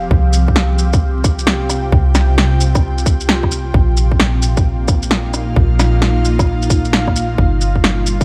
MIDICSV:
0, 0, Header, 1, 4, 480
1, 0, Start_track
1, 0, Tempo, 454545
1, 115, Time_signature, 4, 2, 24, 8
1, 8708, End_track
2, 0, Start_track
2, 0, Title_t, "Ambient pad"
2, 0, Program_c, 0, 92
2, 0, Note_on_c, 0, 53, 85
2, 0, Note_on_c, 0, 60, 72
2, 0, Note_on_c, 0, 67, 77
2, 0, Note_on_c, 0, 68, 76
2, 0, Note_on_c, 0, 77, 80
2, 109, Note_off_c, 0, 68, 0
2, 115, Note_off_c, 0, 53, 0
2, 115, Note_on_c, 0, 48, 77
2, 508, Note_on_c, 0, 65, 81
2, 834, Note_on_c, 0, 79, 85
2, 1677, Note_off_c, 0, 77, 0
2, 3954, Note_on_c, 0, 46, 89
2, 3955, Note_off_c, 0, 48, 0
2, 4050, Note_on_c, 0, 58, 89
2, 4352, Note_on_c, 0, 63, 73
2, 4595, Note_on_c, 0, 77, 92
2, 4952, Note_off_c, 0, 60, 0
2, 5138, Note_off_c, 0, 67, 0
2, 5348, Note_off_c, 0, 79, 0
2, 7792, Note_off_c, 0, 63, 0
2, 7795, Note_off_c, 0, 46, 0
2, 7810, Note_on_c, 0, 55, 93
2, 7967, Note_on_c, 0, 62, 87
2, 8160, Note_on_c, 0, 79, 74
2, 8430, Note_on_c, 0, 70, 76
2, 8691, Note_off_c, 0, 58, 0
2, 8708, Note_off_c, 0, 55, 0
2, 8708, Note_off_c, 0, 62, 0
2, 8708, Note_off_c, 0, 65, 0
2, 8708, Note_off_c, 0, 70, 0
2, 8708, Note_off_c, 0, 77, 0
2, 8708, Note_off_c, 0, 79, 0
2, 8708, End_track
3, 0, Start_track
3, 0, Title_t, "808-style bass"
3, 0, Program_c, 1, 38
3, 112, Note_on_c, 1, 36, 91
3, 2017, Note_off_c, 1, 36, 0
3, 2029, Note_on_c, 1, 36, 92
3, 3935, Note_off_c, 1, 36, 0
3, 3950, Note_on_c, 1, 34, 91
3, 5855, Note_off_c, 1, 34, 0
3, 5876, Note_on_c, 1, 34, 91
3, 7778, Note_off_c, 1, 34, 0
3, 7797, Note_on_c, 1, 31, 91
3, 8708, Note_off_c, 1, 31, 0
3, 8708, End_track
4, 0, Start_track
4, 0, Title_t, "Drums"
4, 115, Note_on_c, 9, 36, 125
4, 221, Note_off_c, 9, 36, 0
4, 349, Note_on_c, 9, 82, 57
4, 455, Note_off_c, 9, 82, 0
4, 508, Note_on_c, 9, 36, 65
4, 589, Note_on_c, 9, 38, 114
4, 614, Note_off_c, 9, 36, 0
4, 694, Note_off_c, 9, 38, 0
4, 830, Note_on_c, 9, 82, 58
4, 935, Note_off_c, 9, 82, 0
4, 985, Note_on_c, 9, 82, 33
4, 987, Note_on_c, 9, 36, 111
4, 1090, Note_off_c, 9, 82, 0
4, 1093, Note_off_c, 9, 36, 0
4, 1310, Note_on_c, 9, 37, 37
4, 1310, Note_on_c, 9, 82, 60
4, 1312, Note_on_c, 9, 36, 111
4, 1416, Note_off_c, 9, 37, 0
4, 1416, Note_off_c, 9, 82, 0
4, 1418, Note_off_c, 9, 36, 0
4, 1466, Note_on_c, 9, 82, 34
4, 1550, Note_on_c, 9, 38, 113
4, 1572, Note_off_c, 9, 82, 0
4, 1656, Note_off_c, 9, 38, 0
4, 1790, Note_on_c, 9, 37, 53
4, 1790, Note_on_c, 9, 82, 60
4, 1896, Note_off_c, 9, 37, 0
4, 1896, Note_off_c, 9, 82, 0
4, 2032, Note_on_c, 9, 36, 123
4, 2137, Note_off_c, 9, 36, 0
4, 2269, Note_on_c, 9, 37, 64
4, 2269, Note_on_c, 9, 38, 65
4, 2269, Note_on_c, 9, 82, 55
4, 2374, Note_off_c, 9, 37, 0
4, 2374, Note_off_c, 9, 38, 0
4, 2374, Note_off_c, 9, 82, 0
4, 2511, Note_on_c, 9, 38, 113
4, 2617, Note_off_c, 9, 38, 0
4, 2752, Note_on_c, 9, 82, 57
4, 2857, Note_off_c, 9, 82, 0
4, 2905, Note_on_c, 9, 37, 65
4, 2905, Note_on_c, 9, 82, 32
4, 2906, Note_on_c, 9, 36, 111
4, 3010, Note_off_c, 9, 37, 0
4, 3010, Note_off_c, 9, 82, 0
4, 3012, Note_off_c, 9, 36, 0
4, 3148, Note_on_c, 9, 82, 31
4, 3232, Note_on_c, 9, 36, 110
4, 3233, Note_off_c, 9, 82, 0
4, 3233, Note_on_c, 9, 82, 58
4, 3337, Note_off_c, 9, 36, 0
4, 3338, Note_off_c, 9, 82, 0
4, 3386, Note_on_c, 9, 82, 32
4, 3472, Note_on_c, 9, 38, 108
4, 3492, Note_off_c, 9, 82, 0
4, 3577, Note_off_c, 9, 38, 0
4, 3625, Note_on_c, 9, 36, 63
4, 3630, Note_on_c, 9, 37, 61
4, 3713, Note_on_c, 9, 82, 58
4, 3731, Note_off_c, 9, 36, 0
4, 3736, Note_off_c, 9, 37, 0
4, 3819, Note_off_c, 9, 82, 0
4, 3952, Note_on_c, 9, 36, 118
4, 4057, Note_off_c, 9, 36, 0
4, 4192, Note_on_c, 9, 82, 55
4, 4298, Note_off_c, 9, 82, 0
4, 4346, Note_on_c, 9, 36, 64
4, 4431, Note_on_c, 9, 38, 107
4, 4451, Note_off_c, 9, 36, 0
4, 4536, Note_off_c, 9, 38, 0
4, 4671, Note_on_c, 9, 82, 55
4, 4777, Note_off_c, 9, 82, 0
4, 4825, Note_on_c, 9, 82, 32
4, 4828, Note_on_c, 9, 36, 107
4, 4931, Note_off_c, 9, 82, 0
4, 4934, Note_off_c, 9, 36, 0
4, 5153, Note_on_c, 9, 37, 37
4, 5153, Note_on_c, 9, 82, 55
4, 5155, Note_on_c, 9, 36, 103
4, 5259, Note_off_c, 9, 37, 0
4, 5259, Note_off_c, 9, 82, 0
4, 5260, Note_off_c, 9, 36, 0
4, 5309, Note_on_c, 9, 82, 32
4, 5394, Note_on_c, 9, 38, 106
4, 5415, Note_off_c, 9, 82, 0
4, 5499, Note_off_c, 9, 38, 0
4, 5635, Note_on_c, 9, 37, 52
4, 5635, Note_on_c, 9, 82, 57
4, 5741, Note_off_c, 9, 37, 0
4, 5741, Note_off_c, 9, 82, 0
4, 5875, Note_on_c, 9, 36, 116
4, 5981, Note_off_c, 9, 36, 0
4, 6119, Note_on_c, 9, 37, 68
4, 6119, Note_on_c, 9, 38, 61
4, 6119, Note_on_c, 9, 82, 54
4, 6225, Note_off_c, 9, 37, 0
4, 6225, Note_off_c, 9, 38, 0
4, 6225, Note_off_c, 9, 82, 0
4, 6355, Note_on_c, 9, 38, 105
4, 6461, Note_off_c, 9, 38, 0
4, 6599, Note_on_c, 9, 82, 56
4, 6704, Note_off_c, 9, 82, 0
4, 6749, Note_on_c, 9, 36, 104
4, 6754, Note_on_c, 9, 37, 69
4, 6754, Note_on_c, 9, 82, 32
4, 6855, Note_off_c, 9, 36, 0
4, 6859, Note_off_c, 9, 37, 0
4, 6859, Note_off_c, 9, 82, 0
4, 6996, Note_on_c, 9, 82, 31
4, 7077, Note_off_c, 9, 82, 0
4, 7077, Note_on_c, 9, 36, 105
4, 7077, Note_on_c, 9, 82, 56
4, 7182, Note_off_c, 9, 36, 0
4, 7183, Note_off_c, 9, 82, 0
4, 7232, Note_on_c, 9, 82, 32
4, 7320, Note_on_c, 9, 38, 104
4, 7338, Note_off_c, 9, 82, 0
4, 7425, Note_off_c, 9, 38, 0
4, 7471, Note_on_c, 9, 36, 60
4, 7475, Note_on_c, 9, 37, 62
4, 7560, Note_on_c, 9, 82, 55
4, 7576, Note_off_c, 9, 36, 0
4, 7580, Note_off_c, 9, 37, 0
4, 7665, Note_off_c, 9, 82, 0
4, 7797, Note_on_c, 9, 36, 117
4, 7902, Note_off_c, 9, 36, 0
4, 8038, Note_on_c, 9, 82, 57
4, 8144, Note_off_c, 9, 82, 0
4, 8190, Note_on_c, 9, 36, 60
4, 8277, Note_on_c, 9, 38, 102
4, 8295, Note_off_c, 9, 36, 0
4, 8383, Note_off_c, 9, 38, 0
4, 8516, Note_on_c, 9, 82, 55
4, 8622, Note_off_c, 9, 82, 0
4, 8668, Note_on_c, 9, 36, 105
4, 8669, Note_on_c, 9, 82, 33
4, 8708, Note_off_c, 9, 36, 0
4, 8708, Note_off_c, 9, 82, 0
4, 8708, End_track
0, 0, End_of_file